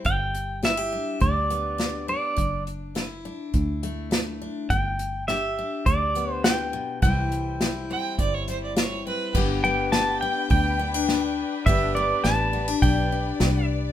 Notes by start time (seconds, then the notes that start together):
Already playing: G3
0.05 G1 G2 G5, kick, closed hi-hat
0.35 closed hi-hat
0.63 D3 E4 E5, snare, closed hi-hat
0.77 G4
0.92 D4
1.20 D2 G2 D5, kick, closed hi-hat
1.50 B3, closed hi-hat
1.78 D3, snare, closed hi-hat
2.08 D4 D5
2.36 F#1 F#2, kick, closed hi-hat
2.67 closed hi-hat
2.95 D3 E4, snare, closed hi-hat
3.25 D4
3.54 D2 F#2, kick, closed hi-hat
3.83 A3, closed hi-hat
4.11 D3, snare, closed hi-hat
4.42 D4
4.70 G1 G2 G5, kick, closed hi-hat
4.99 closed hi-hat
5.28 D3 G4 E5, snare, closed hi-hat
5.59 D4
5.86 D2 G2 D5, kick, closed hi-hat
6.15 B3, closed hi-hat
6.33 C5
6.44 A2 G5, snare, closed hi-hat
6.73 B2
7.02 C2 C3 E3 G3 C4 E4 G5, kick, closed hi-hat
7.32 closed hi-hat
7.61 E3 E4, snare, closed hi-hat
7.90 C4 G5
8.19 G1 G2 D5, kick, closed hi-hat
8.34 C#5
8.48 G3 C5, closed hi-hat
8.63 D5
8.76 E3 C#5, snare, closed hi-hat
9.07 C4 B4
9.35 G1 G2 B3 D4 G4 B4 G5, kick, crash
9.64 B3 G5
9.92 D3 A5, snare, open hi-hat
10.21 D4 G5
10.50 D2 G2 G4 G5, kick, open hi-hat
10.79 B3
10.94 D4
11.09 D3, snare, open hi-hat
11.66 G1 G2 B3 D4 G4 D5 E5, kick, open hi-hat
11.95 B3 D5
12.24 A1 D3 A5, snare, open hi-hat
12.53 B3
12.68 D4
12.82 B1 G2 G4 G5, kick, open hi-hat
13.12 D4
13.40 C2 D3, snare, open hi-hat